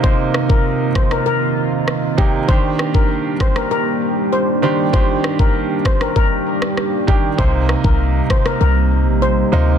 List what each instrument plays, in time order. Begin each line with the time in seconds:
Already playing: grand piano C3 A#3 D#4, ambient pad D#3 A#3 C4
0.03 grand piano C3 A#3 D#4, ambient pad F4, steel pan C5, kick
0.34 cross-stick
0.49 steel pan A#4, kick
0.95 steel pan C5, kick, cross-stick
1.11 steel pan A#4, cross-stick
1.26 steel pan A#4
1.88 cross-stick
2.18 grand piano C3 A#3 D#4, steel pan G4, kick
2.48 grand piano D#3 D4 G4, ambient pad G3 D4 G4, steel pan C5, kick
2.79 cross-stick
2.94 steel pan A#4, kick
3.40 steel pan C5, kick, cross-stick
3.56 steel pan A#4, cross-stick
3.71 steel pan A#4
4.33 steel pan C5
4.62 grand piano D#3 D4 G4, steel pan C5
4.93 grand piano D#3 D4 G4, steel pan C5, kick
5.24 cross-stick
5.39 steel pan A#4, kick
5.85 steel pan C5, kick, cross-stick
6.01 steel pan A#4, cross-stick
6.16 steel pan A#4, kick
6.62 cross-stick
6.77 cross-stick
7.07 grand piano D#3 D4 G4, steel pan G4, kick
7.38 808-style bass C2, grand piano C3 A#3 D#4, ambient pad C4, steel pan C5, kick
7.69 cross-stick
7.84 808-style bass C2, steel pan A#4, kick
8.30 steel pan C5, kick, cross-stick
8.46 steel pan A#4, cross-stick
8.61 808-style bass C2, steel pan A#4
9.07 808-style bass A#1
9.22 steel pan C5
9.52 808-style bass D2, grand piano C3 A#3 D#4, steel pan C5